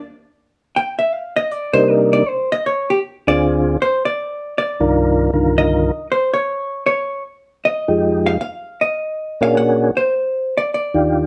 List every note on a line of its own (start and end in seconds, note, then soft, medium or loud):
0.76 0.98 G5 medium
0.99 1.14 E5 medium
1.14 1.36 F5 loud
1.36 1.51 D#5 loud
1.51 1.74 D5 medium
1.73 2.23 C3 medium
1.73 2.24 G3 medium
1.73 2.24 A#3 medium
1.73 2.24 D4 medium
1.73 2.24 D#4 medium
1.73 1.90 C5 loud
1.90 2.13 A#4 medium
2.13 2.29 D5 loud
2.29 2.51 C5 medium
2.52 2.65 D#5 loud
2.66 2.89 C#5 medium
2.90 2.98 G4 medium
3.27 3.77 D2 medium
3.27 3.77 D3 medium
3.27 3.77 C4 medium
3.27 3.77 F4 medium
3.27 3.77 G#4 medium
3.27 3.77 D5 loud
3.82 4.05 C5 medium
4.05 4.54 D5 loud
4.58 4.93 D5 medium
4.80 5.30 C2 medium
4.80 5.30 G2 medium
4.80 5.30 D#3 medium
4.80 5.31 D4 medium
4.80 5.31 F4 medium
4.80 5.30 A#4 medium
5.33 5.91 C2 medium
5.33 5.91 G2 medium
5.33 5.91 D3 medium
5.33 5.91 D#3 medium
5.33 5.92 F4 medium
5.33 5.91 A#4 medium
5.58 6.07 D#5 medium
6.12 6.33 C5 medium
6.34 6.83 C#5 medium
6.86 7.22 C#5 medium
7.65 8.23 D#5 medium
7.88 8.38 F2 medium
7.88 8.38 F3 medium
7.88 8.38 G#3 medium
7.88 8.38 D#4 medium
7.88 8.38 G4 medium
8.26 8.40 F5 loud
8.41 8.99 F5 loud
8.81 9.39 D#5 medium
9.41 9.91 A#2 medium
9.41 9.91 A#3 medium
9.41 9.91 C#4 medium
9.41 9.91 D4 medium
9.41 9.91 F#4 medium
9.41 9.91 G#4 medium
9.41 9.56 F5 loud
9.57 10.15 F#5 loud
9.97 10.54 C5 medium
10.57 10.70 D5 medium
10.74 11.27 D5 medium
10.94 11.27 D#2 medium
10.94 11.27 D#3 medium
10.94 11.27 D4 medium
10.94 11.27 F4 medium
10.94 11.27 G4 medium